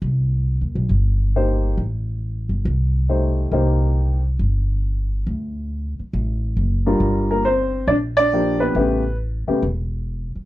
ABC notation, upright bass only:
X:1
M:4/4
L:1/8
Q:"Swing" 1/4=138
K:Gm
V:1 name="Upright bass" clef=bass
C,,2- (3C,, E,, =B,,, G,,,4 | A,,,3 G,,, C,,4 | C,,4 G,,,4 | D,,3 z A,,,2 ^F,,,2 |
G,,,4 B,,,4 | A,,,3 z =E,,,3 z |]